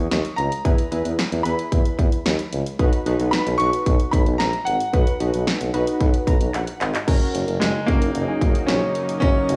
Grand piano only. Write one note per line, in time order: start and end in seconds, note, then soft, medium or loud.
0.00 0.40 C#6 loud
0.36 1.48 A#5 medium
1.43 2.47 B5 medium
3.31 3.60 B5 loud
3.58 4.14 C#6 loud
4.11 4.18 B5 medium
4.38 4.67 A#5 medium
4.65 6.23 F#5 medium
7.60 7.86 G#3 medium
7.86 8.70 A#3 medium
8.67 9.17 C#4 medium
9.20 9.56 C#4 loud